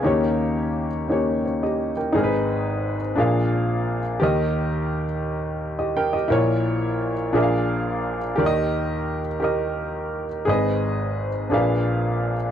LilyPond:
<<
  \new Staff \with { instrumentName = "Upright piano" } { \time 6/8 \key dis \phrygian \tempo 4. = 58 << { <gis' eis''>16 r4. r16 cis''16 <g' dis''>8 <ais' g''>16~ | \key gis \minor <ais' g''>16 r2 r8. | r2 r16 <g' dis''>16 <ais' g''>16 <g' dis''>16~ | <g' dis''>16 r2 r8. |
r2. | r2. | } \\ { <ais cis' dis' g' cis''>4 r8 <ais cis' dis' g' cis''>4 r8 | <dis' gis' ais' b'>4 r8 <d' eis' gis' ais' eis''>4 r8 | <g' ais' dis''>4 r2 | <e' ais' cis''>4 r8 <d' eis' gis' ais' e'' eis''>4 r8 |
<g' ais' d'' dis''>4 r8 <g' ais' dis''>4 r8 | <gis' b' dis''>4 r8 <d' gis' ais' b' eis''>4 r8 | } >> }
  \new Staff \with { instrumentName = "Upright piano" } { \clef bass \time 6/8 \key dis \phrygian <dis, dis>2. | \key gis \minor <gis,, gis,>4. <ais,, ais,>4. | <dis, dis>2. | <ais,, ais,>4. <ais,, ais,>4. |
<dis, dis>2. | <gis,, gis,>4. <ais,, ais,>4. | }
>>